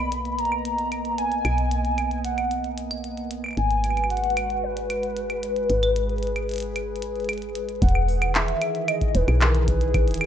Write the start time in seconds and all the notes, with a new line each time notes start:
Already playing: B1 A#3 B3 D#5 B5
0.12 closed hi-hat
0.25 closed hi-hat
0.39 A#5, closed hi-hat
0.45 closed hi-hat
0.52 claves
0.65 closed hi-hat
0.78 closed hi-hat
0.92 closed hi-hat, claves
1.05 closed hi-hat
1.18 G#5, closed hi-hat
1.32 closed hi-hat
1.45 B1, closed hi-hat, claves
1.58 closed hi-hat
1.71 closed hi-hat
1.85 closed hi-hat
1.98 closed hi-hat, claves
2.11 closed hi-hat
2.24 F#5, closed hi-hat
2.38 closed hi-hat, claves
2.51 closed hi-hat
2.64 closed hi-hat
2.78 closed hi-hat
2.91 closed hi-hat, claves
3.04 closed hi-hat
3.17 closed hi-hat
3.31 closed hi-hat
3.44 claves
3.46 claves
3.48 claves
3.51 claves
3.53 claves
3.55 G#1 G#3 F#4 B4 G#5, closed hi-hat, claves
3.71 closed hi-hat
3.84 closed hi-hat, claves
3.90 claves
3.97 closed hi-hat, claves
4.04 claves
4.10 F#5, closed hi-hat
4.17 closed hi-hat
4.24 closed hi-hat
4.30 closed hi-hat
4.37 closed hi-hat, claves
4.50 closed hi-hat
4.63 B4
4.77 closed hi-hat
4.90 closed hi-hat, claves
5.03 closed hi-hat
5.17 closed hi-hat
5.30 closed hi-hat, claves
5.43 closed hi-hat
5.56 closed hi-hat
5.69 G#1 G#4, closed hi-hat
5.83 closed hi-hat, claves
5.96 closed hi-hat
6.09 closed hi-hat
6.18 closed hi-hat
6.23 closed hi-hat
6.27 closed hi-hat
6.36 closed hi-hat, claves
6.49 closed hi-hat
6.51 closed hi-hat
6.54 closed hi-hat
6.56 closed hi-hat
6.58 closed hi-hat
6.60 closed hi-hat
6.76 closed hi-hat, claves
6.96 closed hi-hat
7.02 closed hi-hat
7.16 closed hi-hat
7.20 closed hi-hat
7.24 closed hi-hat
7.29 closed hi-hat, claves
7.33 closed hi-hat
7.38 closed hi-hat
7.42 closed hi-hat
7.55 closed hi-hat
7.69 closed hi-hat
7.82 E1 D#3 E3 G#4 F#5, kick, closed hi-hat
7.89 closed hi-hat
7.95 claves
8.08 open hi-hat
8.22 closed hi-hat, claves
8.35 E5, clap, closed hi-hat
8.48 closed hi-hat
8.62 closed hi-hat, claves
8.75 closed hi-hat
8.88 D#5, closed hi-hat, claves
9.01 kick, closed hi-hat
9.15 E1 B4, closed hi-hat
9.28 B1, closed hi-hat, claves
9.41 A#4, clap, closed hi-hat
9.55 closed hi-hat
9.68 B4, kick, closed hi-hat
9.81 closed hi-hat
9.94 kick, closed hi-hat, claves
10.08 E1, closed hi-hat
10.11 closed hi-hat
10.14 closed hi-hat
10.18 closed hi-hat
10.21 closed hi-hat, claves